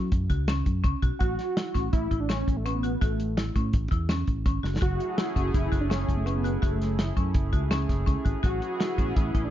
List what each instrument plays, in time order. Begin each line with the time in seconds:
Already playing: marimba C#4
0.12 fingered electric bass F#2, kick, closed hi-hat
0.30 fingered electric bass C#2, marimba F#4, kick, closed hi-hat
0.48 marimba C#4, snare, closed hi-hat
0.66 fingered electric bass F#2, kick, closed hi-hat
0.84 fingered electric bass C#2, marimba C#4, kick, closed hi-hat
1.02 fingered electric bass B1, marimba F#4, kick, closed hi-hat
1.19 fingered electric bass A1, analog synth lead F#4, marimba F#4, kick, closed hi-hat
1.39 snare, closed hi-hat
1.57 marimba E4, snare, closed hi-hat
1.75 fingered electric bass A1, marimba C#4, kick, snare, closed hi-hat
1.93 fingered electric bass A1, analog synth lead E4, kick, closed hi-hat
2.11 fingered electric bass A1, marimba E4, kick, closed hi-hat
2.20 analog synth lead D4
2.29 marimba C#4, analog synth lead C#4, snare, closed hi-hat
2.47 fingered electric bass A1, kick, closed hi-hat
2.57 analog synth lead A3
2.65 analog synth lead B3, marimba C#4, closed hi-hat
2.83 marimba F#4, closed hi-hat
3.01 fingered electric bass A1, analog synth lead A3, marimba F#4, kick, closed hi-hat
3.20 closed hi-hat
3.37 marimba E4, snare, closed hi-hat
3.55 fingered electric bass A2, marimba C#4, kick, closed hi-hat
3.73 fingered electric bass A1, kick, closed hi-hat
3.91 fingered electric bass E2, marimba E4, kick, closed hi-hat
4.09 marimba C#4, snare, closed hi-hat
4.27 fingered electric bass A1, kick, closed hi-hat
4.45 fingered electric bass G#1, marimba C#4, kick, closed hi-hat
4.63 fingered electric bass F#1, marimba F#4, snare
4.76 snare
4.81 fingered electric bass F#1, analog synth pad A3 C#4 E4 G#4, marimba F#4, analog synth lead F#4, kick, closed hi-hat
5.00 closed hi-hat
5.18 marimba E4, snare, closed hi-hat
5.36 fingered electric bass F#1, marimba C#4, kick, closed hi-hat
5.54 fingered electric bass F#1, analog synth lead E4, kick, closed hi-hat
5.72 fingered electric bass F#1, marimba F#4, kick, closed hi-hat
5.81 analog synth lead D4
5.89 analog synth lead C#4, marimba C#4, snare, closed hi-hat
6.08 fingered electric bass F#1, kick, closed hi-hat
6.17 analog synth lead A3
6.26 analog synth lead B3, marimba C#4, closed hi-hat
6.44 marimba F#4, closed hi-hat
6.62 fingered electric bass F#1, analog synth lead A3, marimba F#4, kick, closed hi-hat
6.82 snare, closed hi-hat
6.99 marimba E4, snare, closed hi-hat
7.17 fingered electric bass F#2, marimba C#4, kick, closed hi-hat
7.34 fingered electric bass F#1, kick, closed hi-hat
7.53 fingered electric bass C#2, marimba F#4, kick, closed hi-hat
7.71 marimba C#4, snare, closed hi-hat
7.89 fingered electric bass F#1, kick, snare, closed hi-hat
8.07 fingered electric bass C#2, marimba C#4, kick, closed hi-hat
8.25 fingered electric bass G#1, marimba F#4, kick, closed hi-hat
8.43 fingered electric bass A1, analog synth pad B3 C#4 E4 G#4, marimba F#4, analog synth lead F#4, kick, closed hi-hat
8.62 closed hi-hat
8.80 marimba E4, snare, closed hi-hat
8.98 fingered electric bass A1, marimba C#4, kick, closed hi-hat
9.16 fingered electric bass A1, analog synth lead E4, kick, closed hi-hat
9.34 fingered electric bass A1, marimba E4, kick, closed hi-hat
9.44 analog synth lead D4